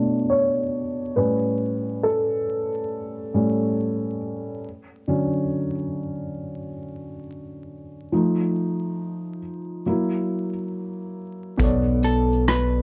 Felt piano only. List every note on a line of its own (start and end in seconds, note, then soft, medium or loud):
0.00 1.19 B2 soft
0.00 1.18 A3 soft
0.00 1.18 D4 soft
0.00 0.30 C#5 medium
0.00 0.34 D5 loud
0.30 1.12 C#5 medium
1.16 2.43 A2 soft
1.16 2.43 G3 soft
1.16 2.43 C#4 medium
1.16 2.06 B4 medium
2.03 4.17 A4 medium
3.34 3.73 A2 soft
3.34 3.73 G3 soft
3.34 3.74 C#4 medium
5.08 5.70 D3 soft
5.08 5.70 F#3 soft
5.08 5.70 C#4 medium
8.12 9.39 F3 soft
8.12 9.39 A3 soft
8.12 9.39 D#4 medium
9.86 10.48 F#3 medium
9.86 10.48 A#3 soft
9.86 10.49 E4 medium
11.57 12.82 B2 medium
11.57 12.82 B3 medium
11.57 12.82 A4 medium
11.62 12.82 C#5 medium
11.62 12.82 D5 medium